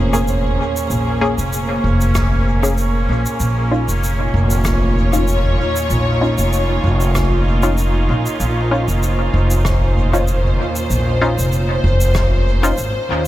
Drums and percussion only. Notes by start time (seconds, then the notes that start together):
0.14 shaker
0.28 shaker
0.45 mid tom
0.76 shaker
0.90 shaker
1.38 shaker
1.53 shaker
1.84 mid tom
2.01 shaker
2.15 kick, cross-stick, shaker
2.64 shaker
2.78 shaker
3.26 shaker
3.40 shaker
3.89 shaker
4.04 shaker
4.51 shaker
4.64 kick, cross-stick, shaker
4.97 mid tom
5.13 shaker
5.28 shaker
5.44 mid tom
5.76 shaker
5.90 shaker
6.38 shaker
6.53 shaker
7.01 shaker
7.15 kick, cross-stick, shaker
7.63 shaker
7.78 shaker
8.26 shaker
8.40 shaker
8.88 shaker
9.03 shaker
9.51 shaker
9.65 kick, cross-stick, shaker
9.96 mid tom
10.14 shaker
10.27 shaker
10.45 mid tom
10.76 shaker
10.90 shaker
11.39 shaker
11.52 shaker
11.84 mid tom
12.01 shaker
12.14 kick, cross-stick, shaker
12.64 shaker
12.78 shaker